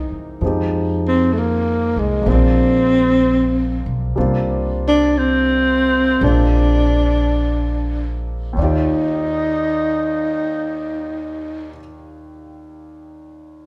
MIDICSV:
0, 0, Header, 1, 5, 480
1, 0, Start_track
1, 0, Key_signature, -3, "major"
1, 0, Tempo, 924499
1, 218, Time_signature, 4, 2, 24, 8
1, 1658, Tempo, 983607
1, 2618, Tempo, 1054482
1, 3098, Tempo, 1132075
1, 3578, Tempo, 1219512
1, 4058, Tempo, 1242236
1, 6026, End_track
2, 0, Start_track
2, 0, Title_t, "Grand piano"
2, 0, Program_c, 0, 0
2, 0, Control_c, 0, 64, 127
2, 0, Note_on_c, 0, 52, 46
2, 0, Note_on_c, 0, 56, 36
2, 0, Note_on_c, 0, 58, 39
2, 0, Note_on_c, 0, 60, 41
2, 0, Note_on_c, 0, 63, 45
2, 211, Note_off_c, 0, 52, 0
2, 213, Note_off_c, 0, 56, 0
2, 215, Note_on_c, 0, 53, 37
2, 216, Note_off_c, 0, 58, 0
2, 219, Note_off_c, 0, 60, 0
2, 224, Note_off_c, 0, 63, 0
2, 224, Control_c, 0, 64, 0
2, 224, Note_on_c, 0, 56, 38
2, 229, Note_on_c, 0, 60, 33
2, 234, Note_on_c, 0, 63, 34
2, 239, Note_on_c, 0, 67, 41
2, 305, Control_c, 0, 64, 127
2, 1141, Note_off_c, 0, 56, 0
2, 1148, Note_on_c, 0, 56, 39
2, 1157, Note_on_c, 0, 58, 37
2, 1166, Note_off_c, 0, 60, 0
2, 1171, Note_off_c, 0, 53, 0
2, 1174, Note_on_c, 0, 60, 39
2, 1180, Control_c, 0, 64, 0
2, 1181, Note_off_c, 0, 63, 0
2, 1184, Note_off_c, 0, 67, 0
2, 1191, Note_on_c, 0, 62, 41
2, 1200, Note_on_c, 0, 65, 46
2, 1267, Control_c, 0, 64, 127
2, 2118, Note_off_c, 0, 56, 0
2, 2122, Note_off_c, 0, 58, 0
2, 2129, Note_off_c, 0, 60, 0
2, 2129, Note_on_c, 0, 55, 44
2, 2133, Note_off_c, 0, 62, 0
2, 2133, Note_off_c, 0, 65, 0
2, 2135, Note_on_c, 0, 58, 42
2, 2136, Control_c, 0, 64, 0
2, 2137, Note_on_c, 0, 60, 46
2, 2140, Note_on_c, 0, 62, 44
2, 2140, Note_on_c, 0, 65, 53
2, 2209, Control_c, 0, 64, 127
2, 3097, Note_off_c, 0, 60, 0
2, 3098, Note_off_c, 0, 55, 0
2, 3098, Note_off_c, 0, 58, 0
2, 3100, Note_off_c, 0, 62, 0
2, 3102, Note_on_c, 0, 56, 39
2, 3103, Note_off_c, 0, 65, 0
2, 3104, Control_c, 0, 64, 0
2, 3104, Note_on_c, 0, 58, 34
2, 3104, Note_on_c, 0, 60, 40
2, 3106, Note_on_c, 0, 62, 37
2, 3112, Note_on_c, 0, 65, 46
2, 3191, Control_c, 0, 64, 127
2, 4043, Note_on_c, 0, 39, 46
2, 4054, Note_on_c, 0, 51, 44
2, 4060, Note_off_c, 0, 56, 0
2, 4061, Note_off_c, 0, 58, 0
2, 4061, Note_off_c, 0, 60, 0
2, 4062, Note_off_c, 0, 62, 0
2, 4064, Control_c, 0, 64, 0
2, 4065, Note_off_c, 0, 65, 0
2, 4066, Note_on_c, 0, 74, 40
2, 4077, Note_on_c, 0, 65, 46
2, 4086, Note_on_c, 0, 67, 47
2, 4121, Control_c, 0, 64, 127
2, 5263, Note_off_c, 0, 39, 0
2, 5274, Note_off_c, 0, 51, 0
2, 5286, Note_off_c, 0, 74, 0
2, 5297, Note_off_c, 0, 65, 0
2, 5306, Note_off_c, 0, 67, 0
2, 6026, End_track
3, 0, Start_track
3, 0, Title_t, "Tenor saxophone"
3, 0, Program_c, 1, 66
3, 0, Note_on_c, 1, 63, 90
3, 77, Note_off_c, 1, 63, 0
3, 560, Note_on_c, 1, 60, 69
3, 691, Note_on_c, 1, 57, 54
3, 699, Note_off_c, 1, 60, 0
3, 716, Note_on_c, 1, 58, 69
3, 724, Note_off_c, 1, 57, 0
3, 1033, Note_on_c, 1, 56, 58
3, 1041, Note_off_c, 1, 58, 0
3, 1188, Note_on_c, 1, 60, 75
3, 1195, Note_off_c, 1, 56, 0
3, 1986, Note_off_c, 1, 60, 0
3, 2481, Note_on_c, 1, 62, 69
3, 2626, Note_on_c, 1, 60, 72
3, 2633, Note_off_c, 1, 62, 0
3, 3105, Note_on_c, 1, 62, 70
3, 3112, Note_off_c, 1, 60, 0
3, 3907, Note_off_c, 1, 62, 0
3, 4074, Note_on_c, 1, 63, 64
3, 5278, Note_off_c, 1, 63, 0
3, 6026, End_track
4, 0, Start_track
4, 0, Title_t, "Upright bass"
4, 0, Program_c, 2, 32
4, 212, Note_on_c, 2, 41, 52
4, 998, Note_off_c, 2, 41, 0
4, 1019, Note_on_c, 2, 36, 47
4, 1161, Note_off_c, 2, 36, 0
4, 1174, Note_on_c, 2, 34, 66
4, 1961, Note_off_c, 2, 34, 0
4, 1983, Note_on_c, 2, 35, 52
4, 2121, Note_off_c, 2, 35, 0
4, 2137, Note_on_c, 2, 36, 61
4, 3084, Note_off_c, 2, 36, 0
4, 3097, Note_on_c, 2, 34, 68
4, 4042, Note_off_c, 2, 34, 0
4, 4058, Note_on_c, 2, 39, 53
4, 5262, Note_off_c, 2, 39, 0
4, 6026, End_track
5, 0, Start_track
5, 0, Title_t, "Muted upright bass strokes"
5, 61, Note_on_c, 9, 29, 31
5, 113, Note_off_c, 9, 29, 0
5, 6026, End_track
0, 0, End_of_file